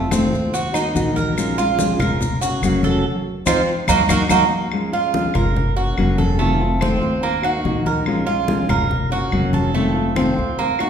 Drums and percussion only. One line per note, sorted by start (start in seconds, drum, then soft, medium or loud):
0.11 high conga loud
0.11 claves medium
0.11 maracas medium
0.33 high conga soft
0.33 maracas soft
0.54 high conga soft
0.54 maracas medium
0.74 high conga soft
0.74 claves medium
0.74 maracas medium
0.96 high conga medium
0.96 maracas medium
1.17 high conga medium
1.17 maracas soft
1.38 high conga soft
1.38 claves medium
1.38 maracas medium
1.58 high conga soft
1.58 maracas medium
1.79 high conga medium
1.79 maracas medium
2.00 low conga medium
2.00 claves medium
2.00 maracas soft
2.21 high conga soft
2.21 low conga medium
2.21 maracas medium
2.41 high conga soft
2.41 maracas medium
2.62 high conga soft
2.62 claves medium
2.62 maracas medium
2.83 high conga medium
2.83 maracas soft
3.46 high conga loud
3.46 claves loud
3.46 maracas loud
3.88 high conga loud
3.88 claves medium
3.88 maracas loud
4.09 high conga medium
4.09 claves loud
4.09 maracas loud
4.29 high conga loud
4.29 claves medium
4.29 maracas loud
4.72 high conga soft
4.72 claves medium
4.94 high conga soft
5.14 high conga loud
5.34 low conga medium
5.34 claves medium
5.56 high conga soft
5.56 low conga medium
5.78 high conga soft
5.98 high conga soft
5.98 claves medium
6.19 high conga medium
6.41 high conga soft
6.61 high conga soft
6.81 high conga loud
6.81 claves medium
7.04 high conga soft
7.24 high conga soft
7.43 high conga soft
7.43 claves medium
7.65 high conga medium
7.86 high conga medium
8.06 high conga soft
8.06 claves medium
8.28 high conga soft
8.48 high conga loud
8.69 low conga medium
8.69 claves medium
8.91 high conga soft
8.91 low conga medium
9.11 high conga soft
9.32 high conga soft
9.32 claves medium
9.53 high conga medium
9.75 high conga soft
9.96 high conga soft
10.16 high conga medium
10.16 claves medium
10.39 high conga soft
10.59 high conga soft
10.79 high conga soft
10.79 claves medium